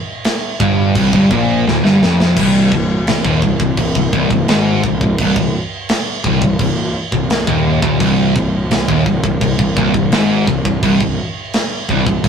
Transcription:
0.24 snare, crash
0.60 picked electric bass G1, distorted electric guitar G2, kick
0.95 picked electric bass C1, distorted electric guitar C2, kick, crash
1.13 picked electric bass G1, distorted electric guitar G2, kick
1.31 picked electric bass A#1, distorted electric guitar A#2, kick
1.66 picked electric bass D1, distorted electric guitar D2, snare
1.83 picked electric bass G1, distorted electric guitar G2, snare
2.01 picked electric bass F1, distorted electric guitar F2, snare
2.20 snare
2.37 picked electric bass C1, distorted electric guitar C2, kick, crash
2.72 picked electric bass C1, distorted electric guitar C2, kick
3.07 picked electric bass C1, distorted electric guitar C2, snare, crash
3.25 picked electric bass D#1, distorted electric guitar D#2, kick
3.42 picked electric bass C1, distorted electric guitar C2, kick
3.60 picked electric bass C1, distorted electric guitar C2, kick
3.77 picked electric bass C1, distorted electric guitar C2, kick, crash
3.95 picked electric bass C1, distorted electric guitar C2, kick
4.13 picked electric bass C1, distorted electric guitar C2, kick
4.30 picked electric bass C1, distorted electric guitar C2, kick
4.48 picked electric bass G#1, distorted electric guitar G#2, snare, crash
4.84 picked electric bass C1, distorted electric guitar C2, kick
5.01 picked electric bass C1, distorted electric guitar C2, kick
5.18 picked electric bass C1, distorted electric guitar C2, kick, crash
5.36 picked electric bass C1, distorted electric guitar C2, kick
5.89 snare, crash
6.24 picked electric bass C1, distorted electric guitar C2, kick
6.42 picked electric bass C1, distorted electric guitar C2, kick
6.59 picked electric bass C1, distorted electric guitar C2, kick, crash
7.12 picked electric bass C1, distorted electric guitar C2, kick
7.30 snare, crash
7.47 picked electric bass D#1, distorted electric guitar D#2, kick
7.82 picked electric bass D1, distorted electric guitar D2, kick
8.00 picked electric bass C1, distorted electric guitar C2, kick, crash
8.36 picked electric bass C1, distorted electric guitar C2, kick
8.71 picked electric bass C1, distorted electric guitar C2, snare, crash
8.88 picked electric bass D#1, distorted electric guitar D#2, kick
9.06 picked electric bass C1, distorted electric guitar C2, kick
9.23 picked electric bass C1, distorted electric guitar C2, kick
9.41 picked electric bass C1, distorted electric guitar C2, kick, crash
9.59 picked electric bass C1, distorted electric guitar C2, kick
9.77 picked electric bass C1, distorted electric guitar C2, kick
9.94 picked electric bass C1, distorted electric guitar C2, kick
10.12 picked electric bass G#1, distorted electric guitar G#2, snare, crash
10.47 picked electric bass C1, distorted electric guitar C2, kick
10.65 picked electric bass C1, distorted electric guitar C2, kick
10.83 picked electric bass C1, distorted electric guitar C2, kick, crash
11.01 picked electric bass C1, distorted electric guitar C2, kick
11.53 snare, crash
11.89 picked electric bass C1, distorted electric guitar C2, kick
12.07 picked electric bass C1, distorted electric guitar C2, kick
12.24 picked electric bass C1, distorted electric guitar C2, kick, crash

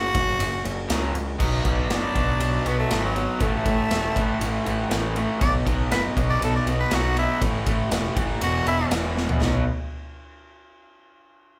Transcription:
Already playing: picked electric bass F#1, overdriven electric guitar F#2 C#3, tenor saxophone F#4
0.15 picked electric bass F#1, overdriven electric guitar F#2 C#3, kick, ride
0.39 picked electric bass F#1, overdriven electric guitar F#2 C#3, ride
0.64 picked electric bass F#1, overdriven electric guitar F#2 C#3, ride
0.88 picked electric bass C#2, overdriven electric guitar F#2 C#3 F#3, snare, ride
1.13 picked electric bass C#2, overdriven electric guitar F#2 C#3, ride
1.38 picked electric bass B1, overdriven electric guitar B2 F#3 B3, kick, crash
1.65 picked electric bass B1, overdriven electric guitar B2 F#3 B3, tenor saxophone D4, kick, ride
1.89 picked electric bass F#1, overdriven electric guitar B2 F#3 B3, snare, ride
2.14 picked electric bass B1, overdriven electric guitar B2 F#3 B3, kick, ride
2.40 picked electric bass B1, overdriven electric guitar B2 F#3 B3, ride
2.65 picked electric bass B1, overdriven electric guitar B2 F#3 B3, tenor saxophone B3, ride
2.79 tenor saxophone A3
2.90 picked electric bass G#1, overdriven electric guitar B2 F#3 B3, snare, ride
3.04 tenor saxophone F#3
3.15 overdriven electric guitar B2 F#3 B3, ride
3.40 picked electric bass A1, overdriven electric guitar A2 E3 A3, tenor saxophone A3, kick, ride
3.65 picked electric bass A1, overdriven electric guitar A2 E3 A3, kick, ride
3.90 picked electric bass E1, overdriven electric guitar A2 E3 A3, snare, ride
4.16 picked electric bass A1, overdriven electric guitar A2 E3 A3, kick, ride
4.40 picked electric bass A1, overdriven electric guitar A2 E3 A3, ride
4.65 picked electric bass A1, overdriven electric guitar A2 E3 A3, ride
4.90 picked electric bass A1, overdriven electric guitar A2 E3 A3, snare, ride
5.15 overdriven electric guitar A2 E3 A3, ride
5.40 picked electric bass B1, overdriven electric guitar B2 F#3 B3, tenor saxophone D5, kick, ride
5.66 picked electric bass B1, overdriven electric guitar B2 F#3 B3, kick, ride
5.91 picked electric bass F#1, overdriven electric guitar B2 F#3 B3, tenor saxophone B4, snare, ride
6.16 picked electric bass B1, overdriven electric guitar B2 F#3 B3, kick, ride
6.30 tenor saxophone D5
6.40 picked electric bass B1, overdriven electric guitar B2 F#3 B3, tenor saxophone A4, ride
6.56 tenor saxophone D5
6.66 picked electric bass B1, overdriven electric guitar B2 F#3 B3, ride
6.80 tenor saxophone B4
6.91 picked electric bass B1, overdriven electric guitar B2 F#3 B3, tenor saxophone F#4, snare, ride
7.16 overdriven electric guitar B2 F#3 B3, tenor saxophone E4, ride
7.41 picked electric bass A1, overdriven electric guitar A2 E3 A3, kick, ride
7.66 picked electric bass A1, overdriven electric guitar A2 E3 A3, kick, ride
7.91 picked electric bass E1, overdriven electric guitar A2 E3 A3, snare, ride
8.16 picked electric bass F#1, overdriven electric guitar A2 E3 A3, kick, ride
8.41 picked electric bass E1, overdriven electric guitar E2 B2 E3, tenor saxophone F#4, ride
8.66 picked electric bass E1, overdriven electric guitar E2 B2 E3, tenor saxophone E4, ride
8.91 picked electric bass E1, overdriven electric guitar E2 B2 E3, snare, ride
9.16 overdriven electric guitar E2 B2 E3, snare
9.29 floor tom
9.41 picked electric bass B1, overdriven electric guitar B2 F#3 B3, snare

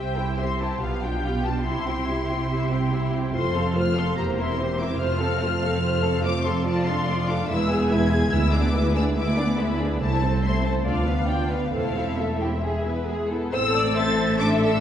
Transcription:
Already playing: cello section C2, double bass section C2, viola section C4 G4, violin section C5 E5 G5
0.17 viola section E4 C5, violin section G4 G5
0.38 viola section C4 G4, violin section C5 E5 C6
0.60 viola section E4 C5, violin section G4 G5 A5
0.81 double bass section B1, cello section B2, viola section B3 G4, violin section F4 F5
1.02 viola section D4 F4, violin section G4 G5
1.24 viola section B3 G4, violin section F4 F5
1.45 viola section D4 F4, violin section G4 G5 A5
1.66 double bass section C2, cello section C3, viola section E4 G4, violin section E4 E5 C6
1.87 viola section C4 E4, violin section G4 G5
2.07 violin section E4 E5, viola section E4 G4
2.29 viola section C4 E4, violin section G4 G5
2.49 viola section E4 G4, violin section E4 E5
2.71 viola section C4 E4, violin section G4 G5
2.91 viola section E4 G4, violin section E4 E5
3.12 viola section C4 E4, violin section G4 G5
3.33 double bass section F1, cello section F2, viola section A3 F4, violin section C5 C6
3.54 viola section C4 A4, violin section A4 F5
3.75 viola section A3 F4, violin section C5 F6
3.96 viola section C4 A4, violin section A4 F5 C6
4.17 double bass section E1, cello section E2, viola section A#3 G4, violin section C5 A#5
4.38 viola section C4 E4, violin section A#4 E5 C6
4.59 viola section A#3 G4, violin section C5
4.80 viola section C4 E4, violin section A#4 E5 D6
5.00 double bass section F1, cello section F2, viola section A3 F4, violin section C5 F6
5.21 viola section C4 A4, violin section A4 F5
5.41 viola section A3 F4, violin section C5
5.62 viola section C4 A4, violin section A4 F5
5.82 viola section A3 F4, violin section C5
6.03 viola section C4 A4, violin section A4 F5
6.24 viola section A3 F4, violin section C5 D6
6.44 viola section C4 A4, violin section A4 F5 C6
6.66 viola section F3 F4, violin section F4 D5 A5
6.86 viola section A3 D4, violin section A4 F5 C6
7.07 viola section F3 F4, violin section F4 D5
7.28 viola section A3 D4, violin section A4 F5 D6
7.49 double bass section E1, cello section E2, viola section G#3 E4, violin section B4 E5 E6
7.70 viola section B3 G#4, violin section G#4 G#5
7.89 viola section G#3 E4, violin section B4 E5 G#6
8.11 viola section B3 G#4, violin section G#4 G#5
8.32 cello section D2, double bass section D2, viola section G#3 E4, violin section B4 E5 E6
8.52 viola section B3 D4, violin section G#4 D5 D6
8.74 viola section G#3 E4, violin section B4 E5
8.95 viola section B3 D4, violin section G#4 D5 E6
9.15 viola section G#3 E4, violin section B4 E5 D6
9.37 viola section B3 D4, violin section G#4 D5
9.58 viola section G#3 E4, violin section B4 E5 B5
9.79 viola section B3 D4, violin section G#4 D5
10.01 cello section C2, double bass section C2, viola section A3 E4, violin section C5 E5 A5
10.22 viola section C4, violin section A4 C5
10.42 viola section A3 E4, violin section C5 E5 C6
10.64 viola section C4, violin section A4 C5 A5
10.84 cello section D2, double bass section D2, viola section D4 F4, violin section D5 F5
11.06 viola section B3 D4, violin section B4 F5
11.28 viola section D4 F4, violin section D5 G5
11.49 viola section B3 D4, violin section B4 F5
11.72 double bass section E1, cello section E2, viola section A3 A4, violin section E4 C5 F5
11.96 viola section C4 E4, violin section A4 E5
12.18 viola section A3 A4, violin section A4 E5
12.41 viola section C4 E4, violin section G4
12.63 viola section G#3 G#4, violin section G#4
12.85 viola section B3 E4, violin section B4
13.07 viola section G#3 G#4, violin section G#4
13.30 viola section B3 E4, violin section A4
13.52 double bass section A1, cello section A2, viola section C4 A4, violin section C5 E6
13.75 violin section D5
13.95 viola section C4 C5, violin section A4 E5 A6
14.17 violin section E5
14.38 viola section D4 A4, violin section A4 D6
14.60 violin section E6

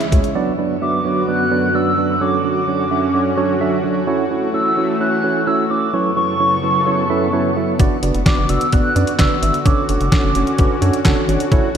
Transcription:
Already playing: analog synth pad C#3 G#3 E4, soft synth lead E5
0.01 closed hi-hat
0.12 analog synth bass D2, tine electric piano C#4 E4 G#4 C#5, kick, closed hi-hat
0.24 closed hi-hat
0.35 analog synth pad F#2 D3 B3 F#4, tine electric piano F#3 B3 D4 F#4 B4 D5
0.59 tine electric piano F#3 B3 D4 F#4 B4 D5
0.82 tine electric piano F#3 B3 D4 F#4 B4 E5, soft synth lead D6
1.05 tine electric piano F#3 B3 D4 F#4 B4 C#5
1.28 tine electric piano F#3 B3 D4 F#4 B4 D5, soft synth lead F#6
1.51 tine electric piano F#3 B3 D4 F#4 B4 D5
1.75 tine electric piano F#3 B3 D4 F#4 B4 D5, soft synth lead E6
1.98 tine electric piano F#3 B3 D4 F#4 B4 D5
2.21 tine electric piano F#3 C#4 D4 F#4 A4 C#5, analog synth pad C#4, soft synth lead D6
2.44 tine electric piano F#3 C#4 D4 F#4 A4 C#5, soft synth lead D6
2.68 tine electric piano F#3 C#4 D4 F#4 A4 C#5
2.91 tine electric piano F#3 C#4 D4 F#4 A4 E5
3.14 tine electric piano F#3 C#4 D4 F#4 A4 C#5
3.38 tine electric piano F#3 C#4 D4 F#4 A4 C#5
3.61 tine electric piano F#3 C#4 D4 F#4 A4 E5
3.84 tine electric piano F#3 C#4 D4 F#4 A4 C#5
4.07 analog synth pad E3 A3, tine electric piano C#4 E4 F#4 A4 C#5
4.31 tine electric piano C#4 E4 F#4 A4 C#5
4.54 tine electric piano C#4 E4 F#4 A4 C#5, soft synth lead E6
4.77 tine electric piano C#4 E4 F#4 A4 C#5
5.00 tine electric piano C#4 E4 F#4 A4 C#5, soft synth lead F#6
5.24 tine electric piano C#4 E4 F#4 A4 C#5
5.47 tine electric piano C#4 E4 F#4 A4 C#5, soft synth lead E6
5.70 tine electric piano C#4 E4 F#4 A4 C#5, soft synth lead D6
5.93 analog synth pad F#2 C#3 B3 A4, tine electric piano F#3 C#4 E4 A4 B4 C#5, soft synth lead C#6
6.17 tine electric piano F#3 C#4 E4 A4 B4 C#5, soft synth lead C#6
6.40 tine electric piano F#3 C#4 E4 A4 B4 C#5
6.63 tine electric piano F#3 C#4 E4 A4 B4 C#5
6.87 tine electric piano F#3 C#4 E4 A4 B4 C#5
7.10 tine electric piano F#3 C#4 E4 A4 B4 E5
7.33 tine electric piano F#3 C#4 E4 A4 B4 C#5
7.57 tine electric piano F#3 C#4 E4 A4 B4 E5
7.80 analog synth bass F#1, analog synth pad D3 F#4, tine electric piano B3 D4 F#4 B4 D5, kick, closed hi-hat
8.03 analog synth bass F#1, tine electric piano B3 D4 F#4 B4 D5, closed hi-hat
8.15 analog synth bass F#1, closed hi-hat
8.26 tine electric piano B3 D4 F#4 B4 D5, soft synth lead D6, kick, snare, closed hi-hat
8.38 analog synth bass F#1
8.49 analog synth bass F#1, tine electric piano B3 D4 F#4 B4 D5, soft synth lead E6, closed hi-hat
8.61 closed hi-hat
8.73 analog synth bass F#1, tine electric piano B3 D4 F#4 B4 D5, soft synth lead F#6, kick, closed hi-hat
8.96 analog synth bass F#2, tine electric piano B3 D4 F#4 B4 D5, closed hi-hat
9.07 closed hi-hat
9.19 analog synth bass F#1, tine electric piano B3 D4 F#4 B4 D5, soft synth lead E6, kick, snare, clap, closed hi-hat
9.42 analog synth bass G#1, tine electric piano B3 D4 F#4 B4 E5, closed hi-hat
9.54 closed hi-hat
9.66 analog synth bass F#1, tine electric piano C#4 D4 F#4 A4 C#5, analog synth pad C#4, soft synth lead D6, kick, closed hi-hat
9.89 analog synth bass F#1, tine electric piano C#4 D4 F#4 A4 C#5, soft synth lead D6, closed hi-hat
10.01 analog synth bass F#1, closed hi-hat
10.12 tine electric piano C#4 D4 F#4 A4 C#5, kick, snare, closed hi-hat
10.24 analog synth bass F#1
10.35 analog synth bass F#1, tine electric piano C#4 D4 F#4 A4 C#5, closed hi-hat
10.47 closed hi-hat
10.58 analog synth bass F#1, tine electric piano C#4 D4 F#4 A4 B4, kick, closed hi-hat
10.82 analog synth bass F#2, tine electric piano C#4 D4 F#4 A4 C#5, closed hi-hat
10.94 closed hi-hat
11.05 analog synth bass F#1, tine electric piano C#4 D4 F#4 A4 C#5, kick, snare, clap, closed hi-hat
11.28 analog synth bass G#1, tine electric piano C#4 D4 F#4 A4 C#5, closed hi-hat
11.40 closed hi-hat
11.52 analog synth bass F#1, analog synth pad E3 A3, tine electric piano C#4 E4 F#4 A4 C#5, kick, closed hi-hat

